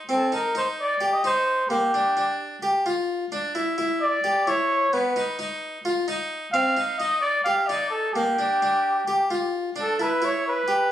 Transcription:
0.09 harpsichord C4, trumpet A4
0.32 harpsichord D#4, trumpet A#4
0.55 harpsichord D#4, trumpet C5
0.80 trumpet D5
1.01 harpsichord G4
1.13 trumpet D#5
1.24 harpsichord D#4, trumpet C5
1.69 harpsichord A#3, trumpet G4
1.94 harpsichord D4
2.17 harpsichord D4
2.63 harpsichord G4
2.86 harpsichord F4
3.32 harpsichord D4
3.55 harpsichord E4
3.78 harpsichord E4
4.01 trumpet D5
4.24 harpsichord G4
4.47 harpsichord E4, trumpet C#5
4.93 harpsichord B3, trumpet B4
5.16 harpsichord D#4
5.39 harpsichord D#4
5.85 harpsichord F4
6.08 harpsichord D#4
6.52 harpsichord C4, trumpet F5
6.77 harpsichord D#4
6.99 harpsichord D#4, trumpet D#5
7.21 trumpet D5
7.44 harpsichord G4, trumpet F5
7.67 harpsichord D#4, trumpet D5
7.90 trumpet A4
8.14 harpsichord A#3, trumpet G4
8.39 harpsichord D4
8.62 harpsichord D4
9.08 harpsichord G4
9.31 harpsichord F4
9.76 harpsichord D4, trumpet A4
10.00 harpsichord E4, trumpet B4
10.22 harpsichord E4, trumpet C#5
10.47 trumpet B4
10.68 harpsichord G4

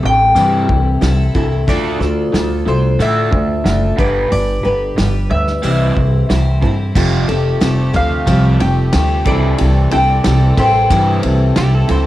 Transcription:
Already playing: twelve-string acoustic guitar G3 C4 E4 A4
0.03 upright bass A1, overdriven electric guitar C3 E3, mandolin G5
0.35 upright bass G2, overdriven electric guitar C3 E3 G3, twelve-string acoustic guitar C3 E3 G3 C4 E4 A4, open hi-hat
0.68 upright bass C2, overdriven electric guitar C3 E3, kick
1.01 upright bass C2, overdriven electric guitar C3 E3, twelve-string acoustic guitar G3 C4 E4 A4, snare, open hi-hat
1.35 upright bass C2, overdriven electric guitar C3 E3, twelve-string acoustic guitar G3 C4 E4 A4, kick
1.67 upright bass D2, overdriven electric guitar D3 A3 D4, twelve-string acoustic guitar D3 A3 D4 F4 A4, mandolin D5, kick, open hi-hat
1.99 upright bass D2, overdriven electric guitar D3 A3, twelve-string acoustic guitar D4 F4 A4, snare
2.32 upright bass D2, overdriven electric guitar D3 A3, twelve-string acoustic guitar A3 D4 F4 A4, snare, open hi-hat
2.66 upright bass C2, overdriven electric guitar D3 A3, twelve-string acoustic guitar D4 F4 A4, mandolin C5
2.99 upright bass A2, overdriven electric guitar D3 A3 D4, twelve-string acoustic guitar D3 A3 D4 F4 A4, mandolin E5, open hi-hat
3.31 upright bass D2, overdriven electric guitar D3 A3, kick
3.64 upright bass F#1, overdriven electric guitar D3 A3, twelve-string acoustic guitar A3 D4 F4 A4, snare, open hi-hat
3.97 upright bass G1, overdriven electric guitar G2 D3 G3, twelve-string acoustic guitar G3 D4 G4 B4, mandolin D5, kick
4.30 upright bass G1, overdriven electric guitar G2 D3, mandolin D5, open hi-hat
4.63 upright bass G1, overdriven electric guitar G2 D3, twelve-string acoustic guitar D4 G4 B4
4.97 upright bass G1, overdriven electric guitar G2 D3, twelve-string acoustic guitar G3 D4 G4 B4, snare, open hi-hat
5.30 upright bass D2, overdriven electric guitar G2 D3, mandolin E5
5.47 snare
5.62 upright bass C2, overdriven electric guitar C3 E3 G3, twelve-string acoustic guitar C3 E3 G3 C4 E4 C5, open hi-hat
5.95 upright bass C2, overdriven electric guitar C3 E3, kick
6.29 upright bass C2, overdriven electric guitar C3 E3, twelve-string acoustic guitar G3 C4 E4 C5, snare, open hi-hat
6.62 upright bass G2, overdriven electric guitar C3 E3, twelve-string acoustic guitar G3 C4 E4 C5, kick
6.95 upright bass F1, overdriven electric guitar F2 C3 F3, twelve-string acoustic guitar F3 G3 C4 G4 A4, accordion F3 A3 G4, kick, crash
7.28 upright bass F1, overdriven electric guitar F2 C3, twelve-string acoustic guitar C4 G4 A4, ride
7.61 upright bass F1, overdriven electric guitar F2 C3, twelve-string acoustic guitar G3 C4 G4 A4, snare, ride
7.93 upright bass D2, overdriven electric guitar F2 C3, twelve-string acoustic guitar C4 G4 A4, mandolin F5, kick, ride
8.26 upright bass C2, overdriven electric guitar F2 C3 F3, twelve-string acoustic guitar F3 G3 C4 G4 A4, kick, ride
8.59 upright bass F1, overdriven electric guitar F2 C3, mandolin G5, ride
8.93 upright bass D2, overdriven electric guitar F2 C3, twelve-string acoustic guitar G3 C4 G4 A4, snare, ride
9.25 upright bass C2, overdriven electric guitar C3 E3 G3, twelve-string acoustic guitar C3 E3 G3 C4 E4 A4, accordion E3 C4 A4, mandolin D5, kick, ride
9.58 upright bass C2, overdriven electric guitar C3 E3, ride
9.91 upright bass C2, overdriven electric guitar C3 E3, twelve-string acoustic guitar G3 C4 E4 A4, mandolin G5, ride
10.10 mandolin D5
10.24 upright bass C2, overdriven electric guitar C3 E3, twelve-string acoustic guitar G3 C4 E4 A4, snare, ride
10.57 upright bass A1, overdriven electric guitar C3 E3, twelve-string acoustic guitar G3 C4 E4 A4, mandolin G4 C5, kick, ride
10.90 upright bass G2, twelve-string acoustic guitar C3 E3 G3 C4 E4 A4, overdriven electric guitar C3 E3 G3, kick, ride
11.23 upright bass C2, overdriven electric guitar C3 E3, ride
11.56 upright bass C2, overdriven electric guitar C3 E3, twelve-string acoustic guitar G3 C4 E4 A4, pedal steel guitar G4, snare, ride
11.75 pedal steel guitar A4
11.88 upright bass C#2, overdriven electric guitar C3 E3, twelve-string acoustic guitar G3 C4 E4 A4, pedal steel guitar C5, ride

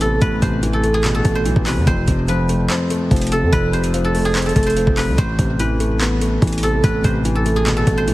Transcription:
Already playing: 808-style bass A1, grand piano A2 E3 A3 B3, guzheng B4
0.00 grand piano C3, guzheng A4, closed hi-hat
0.21 808-style bass A1, grand piano A2, guzheng B4, kick, closed hi-hat
0.42 808-style bass A1, grand piano C3, guzheng C5, kick, closed hi-hat
0.63 grand piano E3, closed hi-hat
0.73 guzheng A4
0.83 grand piano A3, closed hi-hat
0.94 guzheng G#4
1.04 grand piano B2, clap, closed hi-hat
1.15 guzheng A4
1.25 808-style bass A1, grand piano A3, kick, closed hi-hat
1.35 guzheng C5
1.45 808-style bass B1, grand piano E3, closed hi-hat
1.56 808-style bass A1, kick
1.66 grand piano C3, guzheng B4, clap, open hi-hat
1.77 808-style bass E2
1.87 808-style bass F1, grand piano F2, guzheng C5, kick, closed hi-hat
2.08 808-style bass F1, grand piano C3, kick, closed hi-hat
2.28 grand piano F3, guzheng B4, closed hi-hat
2.49 grand piano A3, closed hi-hat
2.70 grand piano C4, clap, closed hi-hat
2.90 grand piano A3, closed hi-hat
3.11 808-style bass F1, grand piano F3, kick, closed hi-hat
3.16 closed hi-hat
3.21 closed hi-hat
3.27 closed hi-hat
3.32 grand piano C3, guzheng A4, closed hi-hat
3.42 808-style bass F2
3.52 808-style bass F1, grand piano F2, guzheng B4, kick, closed hi-hat
3.73 grand piano C3, guzheng C5, closed hi-hat
3.84 closed hi-hat
3.94 grand piano F3, closed hi-hat
4.04 guzheng A4
4.15 grand piano A3, open hi-hat
4.25 guzheng G#4
4.35 grand piano C4, clap, closed hi-hat
4.42 guzheng A4, closed hi-hat
4.49 closed hi-hat
4.56 808-style bass F1, grand piano A3, kick, closed hi-hat
4.63 guzheng C5, closed hi-hat
4.70 closed hi-hat
4.77 grand piano F3, closed hi-hat
4.87 808-style bass F1, kick
4.97 grand piano C3, guzheng B4, clap, open hi-hat
5.08 808-style bass C2
5.18 808-style bass A1, grand piano A2, guzheng C5, kick, closed hi-hat
5.39 808-style bass A1, grand piano C3, kick, closed hi-hat
5.59 grand piano E3, guzheng B4, closed hi-hat
5.80 grand piano A3, closed hi-hat
6.01 grand piano B3, clap, closed hi-hat
6.21 grand piano A3, closed hi-hat
6.42 808-style bass A1, grand piano E3, kick, closed hi-hat
6.47 closed hi-hat
6.53 closed hi-hat
6.58 closed hi-hat
6.63 grand piano C3, guzheng A4, closed hi-hat
6.84 808-style bass A1, grand piano A2, guzheng B4, kick, closed hi-hat
7.04 808-style bass A1, grand piano C3, guzheng C5, kick, closed hi-hat
7.25 grand piano E3, closed hi-hat
7.35 guzheng A4
7.46 grand piano A3, closed hi-hat
7.56 guzheng G#4
7.66 grand piano B2, clap, closed hi-hat
7.77 guzheng A4
7.87 808-style bass A1, grand piano A3, kick, closed hi-hat
7.98 guzheng C5
8.08 808-style bass B1, grand piano E3, closed hi-hat

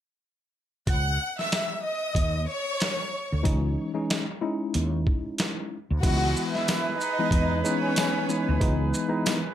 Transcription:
0.87 fretless electric bass C#2, violin section F#5 F#6, kick, closed hi-hat
1.39 violin section E5 E6, snare
1.52 snare, closed hi-hat
1.84 violin section D#5 D#6
2.15 fretless electric bass D#2, kick, closed hi-hat
2.48 violin section C#5 C#6
2.80 snare, closed hi-hat
3.32 fretless electric bass D2
3.43 fretless electric bass C#2, tine electric piano E3 G#3 C#4 D#4, kick, closed hi-hat
3.94 tine electric piano E3 G#3 C#4 D#4
4.10 snare, closed hi-hat
4.41 tine electric piano G#3 C#4 D#4 E4
4.74 fretless electric bass D#2, closed hi-hat
5.07 kick
5.38 snare, closed hi-hat
5.90 fretless electric bass D2
6.02 fretless electric bass C#2, horn section E3 G#4 B4, tine electric piano E3 G#3 B3 E4, violin section F#4 F#5, kick, closed hi-hat, crash
6.36 shaker
6.54 violin section E4 E5, snare
6.68 snare, closed hi-hat, tambourine
6.99 violin section D#4 D#5, shaker
7.19 tine electric piano E3 G#3 B3 D#4
7.31 fretless electric bass E2, kick, closed hi-hat
7.64 tine electric piano E3 G#3 B3 D#4, violin section C#4 C#5, shaker
7.96 snare, closed hi-hat, tambourine
8.29 tine electric piano E3 G#3 B3 D#4, shaker
8.48 fretless electric bass D2
8.60 fretless electric bass C#2, tine electric piano E3 G#3 B3 D#4, kick, closed hi-hat
8.94 shaker
9.08 tine electric piano E3 G#3 B3 D#4
9.26 snare, closed hi-hat, tambourine

